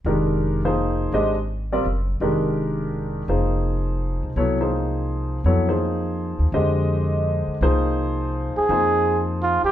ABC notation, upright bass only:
X:1
M:3/4
L:1/8
Q:"Swing" 1/4=167
K:Fdor
V:1 name="Upright bass" clef=bass
F,,,6 | A,,,4 _G,,,2 | F,,,6 | F,,,4- F,,, C,, |
C,,6 | F,,4- F,, E,, | F,,4- F,, z | C,,4- C,, z |
F,,4- F,, z |]